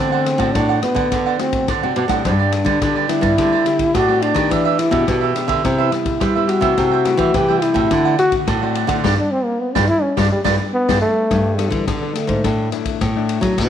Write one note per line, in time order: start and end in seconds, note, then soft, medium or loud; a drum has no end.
0.00 0.35 D3 medium
0.00 0.52 D3 medium
0.00 0.36 A3 medium
0.00 0.36 C4 medium
0.00 0.57 C4 loud
0.00 0.11 D4 medium
0.00 0.36 F#4 medium
0.00 0.11 C5 medium
0.00 0.12 D5 medium
0.00 0.11 F#5 medium
0.12 0.25 C5 medium
0.12 0.25 D5 medium
0.12 0.25 F#5 medium
0.25 muted cavaquinho stroke soft
0.25 cross-stick medium
0.25 ride medium
0.38 0.51 A2 medium
0.38 0.78 A3 medium
0.38 0.78 C4 medium
0.38 0.78 F#4 medium
0.38 0.54 C5 medium
0.38 0.53 D5 medium
0.38 0.53 F#5 medium
0.38 kick medium
0.38 ride soft
0.54 1.09 A2 medium
0.54 0.79 A2 medium
0.54 0.67 D4 soft
0.54 0.82 D4 medium
0.54 0.68 C5 soft
0.54 0.68 D5 soft
0.54 0.68 F#5 soft
0.54 kick medium
0.54 cross-stick medium
0.54 ride soft
0.69 0.97 C5 medium
0.69 0.96 D5 medium
0.69 0.94 F#5 medium
0.83 1.19 A3 medium
0.83 1.41 B3 medium
0.83 1.20 F#4 medium
0.83 cross-stick medium
0.83 ride soft
0.95 1.08 D3 medium
0.95 1.11 C5 medium
0.95 1.10 D5 medium
0.95 1.10 F#5 medium
0.95 kick medium
0.95 ride soft
1.11 1.65 D3 medium
1.11 1.36 D3 loud
1.11 1.24 D4 soft
1.11 1.25 C5 soft
1.11 1.25 D5 soft
1.11 1.25 F#5 medium
1.11 kick medium
1.11 cross-stick medium
1.11 ride soft
1.26 1.39 C5 medium
1.26 1.39 D5 medium
1.26 1.39 F#5 medium
1.39 1.66 A3 medium
1.39 1.68 C4 medium
1.39 1.66 C4 medium
1.39 1.67 F#4 medium
1.39 muted cavaquinho stroke soft
1.39 cross-stick medium
1.39 ride soft
1.53 kick medium
1.53 ride medium
1.68 2.22 A2 medium
1.68 1.81 D3 medium
1.68 1.81 D4 medium
1.68 1.82 C5 medium
1.68 1.82 D5 medium
1.68 1.82 F#5 medium
1.68 kick medium
1.68 cross-stick medium
1.68 ride soft
1.83 1.96 C3 medium
1.83 2.06 A3 medium
1.83 2.06 C4 medium
1.83 2.07 F#4 medium
1.83 1.96 C5 soft
1.83 1.96 D5 medium
1.83 1.96 F#5 medium
1.96 2.07 B2 medium
1.96 2.09 D4 medium
1.96 2.10 C5 medium
1.96 2.09 D5 medium
1.96 2.08 F#5 medium
1.96 ride soft
2.08 2.22 A2 medium
2.08 2.62 G3 medium
2.08 2.62 B3 medium
2.08 2.62 D4 medium
2.08 2.24 C5 medium
2.08 2.24 D5 medium
2.08 2.23 F#5 medium
2.08 kick medium
2.08 cross-stick medium
2.08 ride medium
2.25 2.79 G2 medium
2.25 2.61 G2 medium
2.25 2.38 D4 medium
2.25 3.06 D4 medium
2.25 2.38 G4 soft
2.25 2.39 B4 medium
2.25 2.38 D5 medium
2.25 kick medium
2.25 cross-stick medium
2.25 ride soft
2.39 2.52 G4 medium
2.39 2.52 B4 medium
2.39 2.52 D5 medium
2.52 muted cavaquinho stroke soft
2.52 cross-stick medium
2.52 ride medium
2.65 2.78 D3 medium
2.65 3.05 G3 medium
2.65 3.05 B3 medium
2.65 3.05 D4 medium
2.65 2.81 G4 medium
2.65 2.80 B4 medium
2.65 2.79 D5 medium
2.65 kick medium
2.65 ride soft
2.81 3.35 D3 medium
2.81 3.06 D3 medium
2.81 2.94 D4 medium
2.81 2.95 G4 soft
2.81 2.95 B4 soft
2.81 2.94 D5 medium
2.81 kick medium
2.81 cross-stick medium
2.81 ride medium
2.96 3.23 G4 medium
2.96 3.22 B4 medium
2.96 3.21 D5 medium
3.09 3.28 G3 medium
3.09 3.28 B3 medium
3.09 3.28 D4 medium
3.09 3.96 E4 loud
3.09 cross-stick medium
3.09 ride medium
3.21 3.34 G2 medium
3.21 3.37 G4 soft
3.21 3.37 B4 medium
3.21 3.36 D5 medium
3.21 kick medium
3.21 ride medium
3.38 3.92 D3 medium
3.38 3.62 D3 medium
3.38 3.55 A3 medium
3.38 3.55 C4 medium
3.38 3.51 D4 medium
3.38 3.51 G4 soft
3.38 3.55 G4 medium
3.38 3.52 C5 soft
3.38 3.51 D5 medium
3.38 kick medium
3.38 cross-stick medium
3.38 ride medium
3.53 3.65 G4 medium
3.53 3.65 C5 medium
3.53 3.65 D5 medium
3.66 4.04 A3 medium
3.66 4.04 C4 medium
3.66 4.04 G4 medium
3.66 muted cavaquinho stroke soft
3.66 cross-stick medium
3.66 ride soft
3.79 kick medium
3.79 ride medium
3.94 4.48 A2 medium
3.94 4.31 A2 medium
3.94 4.08 D4 medium
3.94 4.24 F#4 loud
3.94 4.08 G4 medium
3.94 4.08 C5 medium
3.94 4.07 D5 medium
3.94 kick medium
3.94 cross-stick medium
3.94 ride medium
4.08 4.33 A3 medium
4.08 4.33 C4 medium
4.08 4.33 G4 medium
4.08 4.21 G4 medium
4.08 4.22 C5 medium
4.08 4.22 D5 medium
4.21 4.35 D4 medium
4.21 4.80 D4 medium
4.21 4.36 G4 medium
4.21 4.35 C5 medium
4.21 4.33 D5 medium
4.21 ride medium
4.34 4.51 D#3 medium
4.34 4.89 B3 medium
4.34 4.89 D4 medium
4.34 4.89 G4 medium
4.34 4.50 G4 medium
4.34 4.50 C5 medium
4.34 4.49 D5 medium
4.34 kick medium
4.34 cross-stick medium
4.34 ride medium
4.50 5.05 E3 medium
4.50 4.88 E3 loud
4.50 4.64 D4 soft
4.50 4.64 G4 medium
4.50 4.65 B4 medium
4.50 4.64 E5 medium
4.50 kick medium
4.50 cross-stick medium
4.50 ride medium
4.65 4.77 G4 medium
4.65 4.78 B4 medium
4.65 4.78 E5 medium
4.78 5.08 E4 medium
4.78 muted cavaquinho stroke soft
4.78 cross-stick medium
4.78 ride medium
4.91 5.04 B2 medium
4.91 5.31 B3 medium
4.91 5.31 D4 medium
4.91 5.07 G4 medium
4.91 5.32 G4 medium
4.91 5.06 B4 medium
4.91 5.06 E5 medium
4.91 kick medium
4.91 ride soft
5.07 5.32 B2 medium
5.07 5.62 B2 medium
5.07 5.20 D4 soft
5.07 5.21 G4 medium
5.07 5.21 B4 medium
5.07 5.20 E5 soft
5.07 kick medium
5.07 cross-stick medium
5.07 ride medium
5.21 5.49 G4 medium
5.21 5.48 B4 medium
5.21 5.47 E5 medium
5.35 5.62 B3 medium
5.35 5.62 D4 medium
5.35 5.62 G4 medium
5.35 cross-stick medium
5.35 ride medium
5.48 5.61 D3 medium
5.48 5.62 G4 soft
5.48 5.63 B4 medium
5.48 5.62 E5 medium
5.48 kick medium
5.48 ride soft
5.64 6.18 C3 medium
5.64 5.89 C3 loud
5.64 5.81 G3 medium
5.64 5.81 B3 medium
5.64 6.46 E4 medium
5.64 5.82 E4 medium
5.64 5.77 G4 soft
5.64 5.78 B4 medium
5.64 5.78 C5 medium
5.64 5.77 E5 medium
5.64 kick medium
5.64 cross-stick medium
5.64 ride soft
5.78 5.91 B4 medium
5.78 5.91 C5 medium
5.78 5.92 E5 medium
5.92 6.19 G3 medium
5.92 6.19 B3 medium
5.92 6.19 E4 medium
5.92 muted cavaquinho stroke soft
5.92 cross-stick medium
5.92 ride soft
6.06 kick medium
6.06 ride soft
6.20 6.57 G3 medium
6.20 6.34 G4 medium
6.20 6.35 B4 medium
6.20 6.34 C5 medium
6.20 6.34 E5 medium
6.20 kick medium
6.20 cross-stick medium
6.20 ride soft
6.35 6.60 G3 medium
6.35 6.60 B3 medium
6.35 6.60 E4 medium
6.35 6.48 B4 medium
6.35 6.47 C5 medium
6.35 6.48 E5 medium
6.48 7.36 F#4 loud
6.48 6.62 G4 medium
6.48 6.61 B4 medium
6.48 6.62 C5 medium
6.48 6.60 E5 medium
6.48 ride medium
6.61 6.74 C3 medium
6.61 7.05 G3 medium
6.61 7.05 A3 medium
6.61 7.06 E4 medium
6.61 6.76 B4 medium
6.61 6.76 C5 medium
6.61 6.76 E5 medium
6.61 kick medium
6.61 cross-stick medium
6.61 ride soft
6.77 7.14 C3 medium
6.77 7.32 C3 medium
6.77 6.90 A4 medium
6.77 6.91 C5 medium
6.77 6.91 E5 medium
6.77 6.90 G5 medium
6.77 kick medium
6.77 cross-stick medium
6.77 ride soft
6.92 7.04 C5 medium
6.92 7.05 E5 medium
6.92 7.05 G5 medium
7.05 7.44 G3 medium
7.05 7.44 A3 medium
7.05 7.44 E4 medium
7.05 muted cavaquinho stroke soft
7.05 cross-stick medium
7.05 ride medium
7.17 7.31 E3 loud
7.17 7.33 C5 medium
7.17 7.33 E5 medium
7.17 7.32 G5 medium
7.17 kick medium
7.17 ride soft
7.34 7.89 C3 medium
7.34 7.58 E3 medium
7.34 7.64 G4 loud
7.34 7.47 A4 soft
7.34 7.48 C5 medium
7.34 7.48 E5 medium
7.34 7.47 G5 medium
7.34 kick loud
7.34 cross-stick medium
7.34 ride soft
7.48 7.73 G3 medium
7.48 7.73 A3 medium
7.48 7.73 E4 medium
7.48 7.76 C5 medium
7.48 7.75 E5 medium
7.48 7.73 G5 medium
7.62 8.18 E4 loud
7.62 cross-stick medium
7.62 ride medium
7.74 7.87 A2 medium
7.74 8.15 A3 medium
7.74 8.15 C4 medium
7.74 8.15 F#4 medium
7.74 7.90 C5 medium
7.74 7.90 E5 medium
7.74 7.89 G5 medium
7.74 kick medium
7.74 ride medium
7.91 8.15 D3 loud
7.91 8.45 D3 medium
7.91 8.04 D4 soft
7.91 8.04 C5 soft
7.91 8.05 D5 soft
7.91 8.04 F#5 medium
7.91 kick medium
7.91 cross-stick medium
7.91 ride medium
8.05 8.18 C5 medium
8.05 8.18 D5 medium
8.05 8.18 F#5 medium
8.18 8.46 A3 medium
8.18 8.46 C4 medium
8.18 8.36 F#4 loud
8.18 8.46 F#4 medium
8.18 muted cavaquinho stroke soft
8.18 cross-stick medium
8.18 ride soft
8.32 kick medium
8.32 ride medium
8.47 8.84 A2 medium
8.47 9.02 A2 medium
8.47 8.60 D4 medium
8.47 8.61 C5 medium
8.47 8.61 D5 medium
8.47 8.60 F#5 medium
8.47 kick medium
8.47 cross-stick medium
8.47 ride medium
8.62 9.00 A3 medium
8.62 9.00 C4 medium
8.62 9.01 F#4 medium
8.62 8.74 C5 medium
8.62 8.75 D5 medium
8.62 8.75 F#5 medium
8.74 8.88 D4 medium
8.74 8.89 C5 medium
8.74 8.88 D5 medium
8.74 8.87 F#5 medium
8.74 ride medium
8.87 9.03 D3 medium
8.87 9.03 C5 medium
8.87 9.03 D5 medium
8.87 9.02 F#5 medium
8.87 kick medium
8.87 cross-stick medium
8.87 ride medium
9.04 9.15 G2 loud
9.04 9.14 G3 loud
9.04 9.14 B3 loud
9.04 9.14 D4 loud
9.04 9.13 G4 loud
9.04 9.13 B4 medium
9.04 9.13 D5 medium
9.04 kick medium
9.04 snare medium
9.19 9.33 D4 medium
9.31 9.46 C4 loud
9.45 9.62 A#3 medium
9.61 9.77 B3 medium
9.75 9.86 G2 loud
9.75 9.85 G3 medium
9.75 9.85 B3 medium
9.75 9.89 D4 loud
9.75 9.84 D4 loud
9.75 9.84 G4 medium
9.75 9.84 B4 medium
9.75 9.84 D5 loud
9.75 kick medium
9.75 snare medium
9.88 10.04 E4 loud
10.02 10.19 C#4 medium
10.17 10.28 G2 loud
10.17 10.26 G3 loud
10.17 10.26 B3 loud
10.17 10.26 D4 loud
10.17 10.31 D4 medium
10.17 10.26 G4 medium
10.17 10.26 B4 medium
10.17 10.26 D5 medium
10.17 kick medium
10.17 snare medium
10.32 10.40 G3 medium
10.44 10.56 G2 loud
10.44 10.55 G3 loud
10.44 10.55 B3 loud
10.44 10.54 D4 loud
10.44 10.54 G4 medium
10.44 10.54 B4 medium
10.44 10.54 D5 loud
10.44 kick medium
10.44 snare medium
10.74 11.00 B3 loud
10.89 10.99 G2 medium
10.89 10.98 G3 medium
10.89 10.98 B3 loud
10.89 10.98 D4 loud
10.89 10.98 G4 medium
10.89 10.98 B4 medium
10.89 10.98 D5 medium
10.89 kick medium
10.89 snare medium
11.01 11.59 A3 loud
11.30 11.67 G2 loud
11.30 11.85 G3 medium
11.30 kick medium
11.30 cross-stick medium
11.30 ride soft
11.57 11.72 G3 medium
11.57 11.97 B3 medium
11.57 11.97 D4 medium
11.57 11.97 A4 medium
11.57 cross-stick medium
11.57 ride medium
11.70 11.84 D3 medium
11.70 11.88 E3 medium
11.70 kick medium
11.70 ride soft
11.86 12.15 D3 medium
11.86 12.41 D3 medium
11.86 12.12 D3 medium
11.86 kick medium
11.86 cross-stick medium
11.86 ride medium
12.01 12.40 B3 medium
12.01 12.40 D4 medium
12.01 12.40 A4 medium
12.14 12.72 A3 medium
12.14 cross-stick medium
12.14 ride medium
12.27 12.41 G#2 medium
12.27 kick medium
12.27 ride soft
12.44 12.98 A2 medium
12.44 12.69 A2 medium
12.44 12.68 A3 medium
12.44 12.68 D4 medium
12.44 12.68 E4 medium
12.44 kick medium
12.44 cross-stick medium
12.44 ride soft
12.72 12.99 A3 medium
12.72 12.99 D4 medium
12.72 13.00 E4 medium
12.72 cross-stick medium
12.72 ride soft
12.85 kick medium
12.85 ride soft
13.01 13.55 A2 medium
13.01 13.37 A2 medium
13.01 kick medium
13.01 cross-stick medium
13.01 ride medium
13.16 13.54 A3 medium
13.16 13.54 D4 medium
13.16 13.54 E4 medium
13.29 ride medium
13.41 13.57 F#3 medium
13.41 kick medium
13.41 cross-stick medium
13.41 ride medium
13.58 13.69 B2 medium
13.58 13.69 G3 medium
13.58 13.69 D4 medium
13.58 13.69 E4 medium
13.58 kick medium
13.58 cross-stick medium
13.58 ride medium